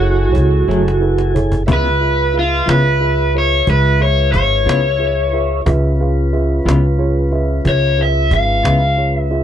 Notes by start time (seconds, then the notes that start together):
Already playing: F#1 E4 F#4 A4 G#5
0.00 E4 G#4 A4 C#5, cajon slap
0.32 C#2 E4 G#4 A4 C#5, cajon bass
0.67 F#1 F#3 A3 E4 G#4 A4 C#5, cajon slap
0.71 cajon slap
0.88 cajon slap
1.00 E4 G#4 A4 B4, cajon slap
1.18 cajon slap
1.34 E4 G#4 A4 C#5, cajon bass
1.52 cajon bass
1.66 C#2 C#3 B3 E4 F4 G#4 B4 E5, cajon bass
1.73 B4
2.00 F4 G#4 B4 E5, cajon slap
2.33 F4 G#4 B4 F5, cajon slap
2.39 F4
2.66 C#2 C#3 B3 E4 F4 G#4 B4 C#5, cajon slap
2.70 B4
3.00 F4 G#4 B4 E5, cajon slap
3.34 F4 G#4 B4 C#5, cajon slap
3.67 C#2 F4 G#4 B4 E5, cajon bass, cajon slap
4.00 F4 G#4 B4 C#5 E5, cajon slap
4.32 G#1 F4 G#4 B4 C#5 F5, cajon bass
4.65 C#2 C#3 B3 E4 F4 G#4 B4 E5, cajon slap
4.99 F4 G#4 B4 E5, cajon slap
5.33 F4 G#4 B4 E5, cajon slap
5.66 C#2 C#4 F4 G#4 B4 E5, cajon bass
6.00 F4 G#4 B4 F5, cajon slap
6.33 F4 G#4 B4 E5, cajon slap
6.64 C#2 B3 E4 F4 G#4 B4 F5
6.69 C#3, cajon slap
6.98 F4 G#4 B4 C#5, cajon slap
7.32 F4 G#4 B4 E5, cajon slap
7.64 C#2 F4 G#4 B4 E5, cajon bass
7.69 C#5
7.98 F4 G#4 B4 E5, cajon slap
8.02 E5
8.31 G#1 F4 G#4 B4 E5 F5, cajon bass
8.63 C#2 C#3 B3 E4 F4 G#4 B4 E5, cajon slap
8.96 F4 G#4 B4 C#5, cajon slap
9.18 E5
9.31 F4 G#4 B4 E5, cajon slap